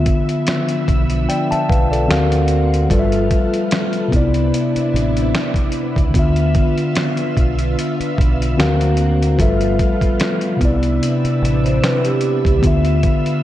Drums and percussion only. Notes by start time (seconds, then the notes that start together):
0.06 kick, closed hi-hat
0.29 closed hi-hat
0.47 finger snap, snare, closed hi-hat
0.69 closed hi-hat
0.88 kick, closed hi-hat
1.10 closed hi-hat
1.30 closed hi-hat
1.52 closed hi-hat
1.69 kick, closed hi-hat
1.93 closed hi-hat
2.11 finger snap, snare, closed hi-hat
2.32 closed hi-hat
2.48 closed hi-hat
2.74 closed hi-hat
2.90 kick, closed hi-hat
3.12 closed hi-hat
3.31 kick, closed hi-hat
3.54 closed hi-hat
3.71 finger snap, snare, closed hi-hat
3.93 closed hi-hat
4.12 kick, closed hi-hat
4.34 closed hi-hat
4.54 closed hi-hat
4.76 closed hi-hat
4.96 closed hi-hat
5.17 closed hi-hat
5.35 finger snap, snare, closed hi-hat
5.54 kick, closed hi-hat
5.72 closed hi-hat
5.96 kick, closed hi-hat
6.14 kick, closed hi-hat
6.36 closed hi-hat
6.55 kick, closed hi-hat
6.78 closed hi-hat
6.95 finger snap, snare, closed hi-hat
7.17 closed hi-hat
7.37 kick, closed hi-hat
7.59 closed hi-hat
7.79 closed hi-hat
8.01 closed hi-hat
8.18 kick, closed hi-hat
8.42 closed hi-hat
8.60 finger snap, snare, closed hi-hat
8.81 closed hi-hat
8.97 closed hi-hat
9.22 closed hi-hat
9.39 kick, closed hi-hat
9.61 closed hi-hat
9.79 kick, closed hi-hat
10.01 kick, closed hi-hat
10.20 finger snap, snare, closed hi-hat
10.41 closed hi-hat
10.61 kick, closed hi-hat
10.83 closed hi-hat
11.03 closed hi-hat
11.25 closed hi-hat
11.45 closed hi-hat
11.66 closed hi-hat
11.84 finger snap, snare, closed hi-hat
12.05 closed hi-hat
12.21 closed hi-hat
12.45 kick, closed hi-hat
12.63 kick, closed hi-hat
12.85 closed hi-hat
13.03 kick, closed hi-hat
13.26 closed hi-hat